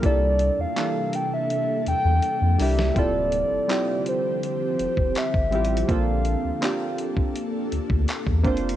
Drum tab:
HH |x-----x-----x-----x-----x-----x-----x-----o-----|x-----x-----x-----x-----x-----x-----x-----x-x-x-|x-----x-----x-----x-----x-----x-----x-----x-x-x-|
CP |------------x-----------------------------------|------------x-----------------------x-----------|------------x-----------------------x-----------|
SD |---------------------------------------------o--|------------------------------------------------|------------------------------------------------|
BD |o-----------------------------------------------|o--------------------------------o-----o--------|o--------------------o-----------o-----o--o-----|